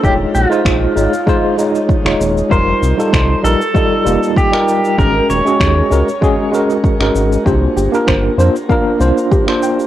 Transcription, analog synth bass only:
X:1
M:4/4
L:1/16
Q:"Swing 16ths" 1/4=97
K:Fm
V:1 name="Analog synth bass" clef=bass
E,,, z B,,, z B,,, z A,,, z6 E,,, E,,, z | F,,, z C,, z C,, z B,,, z3 F,,, z4 z | A,,, z E,,, z E,, z D,, z6 A,,, A,,, z | C,, z G,,, z G,,, z F,, z3 C,, z4 z |]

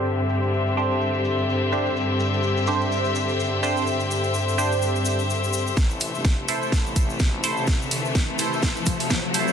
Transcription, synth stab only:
X:1
M:4/4
L:1/8
Q:"Swing 16ths" 1/4=126
K:Am
V:1 name="Synth stab"
z3 [DGc]4 [DGc] | z3 [DGc]4 [DGc] | z3 [DGc]3 z2 | z3 [EAc]4 [EAc] |
z3 [EAc]4 [EAc] |]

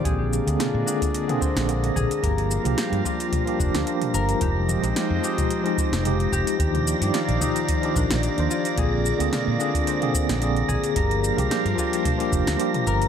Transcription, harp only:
X:1
M:4/4
L:1/8
Q:"Swing 16ths" 1/4=110
K:Bbmix
V:1 name="Harp"
A z F D z C z A | B z G F z D z B | G z F E z C z G | G z F E z D z F |
A z F D C z2 A | B z G F D z2 B |]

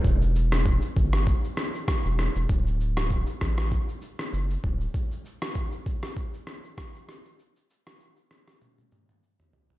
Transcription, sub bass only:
X:1
M:4/4
L:1/16
Q:"Swing 16ths" 1/4=98
K:Em
V:1 name="Sub bass" clef=bass
E,,,4- E,,, z G,,,3 z4 E,,,2 E,,, | D,,,4- D,,, z A,,,3 z3 F,,,2 D,,,2 | z16 | z16 |]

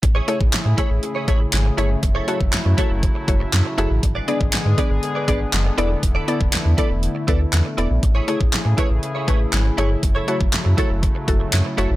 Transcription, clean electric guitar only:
X:1
M:4/4
L:1/16
Q:1/4=120
K:A
V:1 name="Clean electric guitar"
z [EGc] [EGc] z3 [EGc] z2 [EGc] [EGc] z3 [EGc] z | z [EAc] [EAc] z3 [EAc] z6 z [EAc] z | z [GBd] [GBd] z3 [GBd] z2 [GBd] [GBd] z3 [EAd] z | z [EAd] [EAd] z3 [EAd] z3 [EAd] z3 [EAd] z |
z [EGc] [EGc] z3 [EGc] z2 [EGc] [EGc] z3 [EGc] z | z [EAc] [EAc] z3 [EAc] z6 z [EAc] z |]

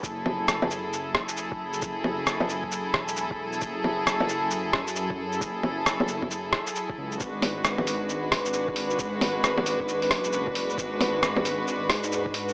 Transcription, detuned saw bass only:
X:1
M:4/4
L:1/8
Q:"Swing 16ths" 1/4=134
K:F#m
V:1 name="Detuned saw bass" clef=bass
F,,,4- F,,, F,,,3 | F,,,4- F,,, E,,,3 | F,,,4- F,,, F,,3 | F,,,4- F,,, z2 C,, |
G,,,4- G,,, G,,,3 | G,,,4- G,,, F,,,3 | G,,,4- G,,, G,,3 |]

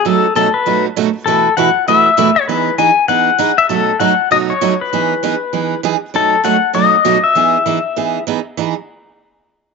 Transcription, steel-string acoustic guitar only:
X:1
M:4/4
L:1/8
Q:"Swing" 1/4=197
K:E
V:1 name="Steel-string acoustic guitar"
[B,,F,A,DF] z [B,,F,A,DF] z [B,,F,A,DF] z [B,,F,A,DF] z | [B,,E,A,EFB] z [B,,E,A,EFB] z [B,,E,A,EFB] z [B,,E,A,EFB] z | [E,B,DG] z [E,B,DG] z [E,B,DG] z [E,B,DG] z | [B,,F,A,DF] z [B,,F,A,DF] z [B,,F,A,DF] z [B,,F,A,DF] z |
[E,B,DG] z [E,B,DG] z [E,B,DG] z [E,B,DG] z | [B,,F,A,DF] z [B,,F,A,DF] z [B,,F,A,DF] z [B,,F,A,DF] z | [E,B,DG] z [E,B,DG] z [E,B,DG] z [E,B,DG] z | [E,B,DG] z6 z |]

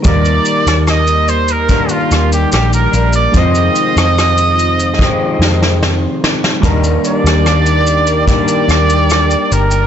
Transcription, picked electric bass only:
X:1
M:4/4
L:1/16
Q:1/4=73
K:Eb
V:1 name="Picked electric bass" clef=bass
E,,2 z E,,6 z E,,2 B,,,2 B,,,2 | F,,2 z F,,6 z F,,4 z2 | E,,2 z E,,6 z E,,4 G,,,2 |]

